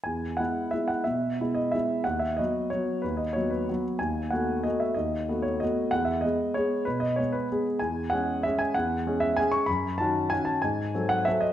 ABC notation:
X:1
M:3/4
L:1/8
Q:1/4=187
K:E
V:1 name="Grand piano"
g2 f2 e f | e3 d e2 | f e d2 c2 | B d c B2 z |
g2 f2 d e | d3 c d2 | f e d2 c2 | B d c B2 z |
[K:C#m] g2 f2 e g | f3 e g c' | b2 a2 g a | g3 f e d |]
V:2 name="Grand piano"
E,,2 [G,B,E]2 [G,B,E]2 | B,,2 [G,B,E]2 [G,B,E]2 | D,,2 [F,B,F]2 [F,B,F]2 | D,,2 [F,B,F]2 [F,B,F]2 |
D,,2 [A,B,F]2 [A,B,F]2 | D,,2 [A,B,F]2 [A,B,F]2 | E,,2 [G,B,G]2 [G,B,G]2 | B,,2 [G,B,G]2 [G,B,G]2 |
[K:C#m] E,,2 [G,CG]2 [G,CG]2 | E,,2 [G,CG]2 [G,CG]2 | F,,2 [D,CF]2 [D,CF]2 | G,,2 [F,^B,A]2 [F,B,A]2 |]